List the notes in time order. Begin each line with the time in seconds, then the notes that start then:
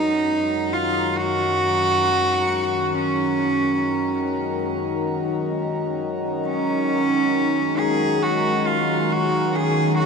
Already playing: F#2 D#3 F#3 G#3 C#4 D#4 A#4
0.72 F4
1.16 F#4
2.94 C#4
6.46 C#4
6.83 G#3
7.12 F#3
7.72 A#4
7.79 C#4 G#4
8.22 F#4
8.67 F4
9.12 F#4
9.55 G#4
9.98 F#4